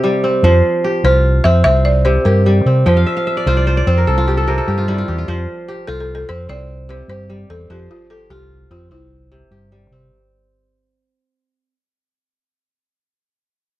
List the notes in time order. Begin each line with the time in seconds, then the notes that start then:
Already playing: C3 C4 F4 G4
0.04 G3
0.24 C4
0.43 F2 F3 C5
0.84 G4
1.04 C2 F4 C5
1.44 F2 C4 E5
1.64 C2 C4 E5
1.85 D5
2.05 C3 C5
2.25 G2 G4 A#4
2.46 G3
2.65 C3 C4
2.86 F2 F3 C5 G5
2.97 F5
3.06 E5
3.17 F5
3.27 E5
3.37 D5
3.46 C2 F4 C5
3.57 D5
3.67 C5
3.77 D5
3.87 F2 C4 C5
3.97 A#4
4.07 C2 A4
4.18 F4
4.28 G4
4.37 A4
4.48 C3 A#4
4.58 A4
4.68 G2 G4
4.78 F4
4.88 G3 E4
4.98 F4
5.08 E2 G4
5.18 F4
5.28 F2 F3 C5
5.68 G4
5.87 C2 F4 A4
6.00 A4
6.15 A4
6.29 F2 C4 C5
6.49 C2 C4 D5
6.89 C3 C5
7.08 G2 G4 C5
7.30 G3
7.49 E2 C4 A4
7.69 F2 F3 G4 C5
7.91 F4
8.10 G4 A4
8.30 C2 F4 G4
8.70 F2 C4 F4
8.90 C2 C4 E4
9.32 C3
9.51 G2 G4
9.72 G3
9.91 C3 C4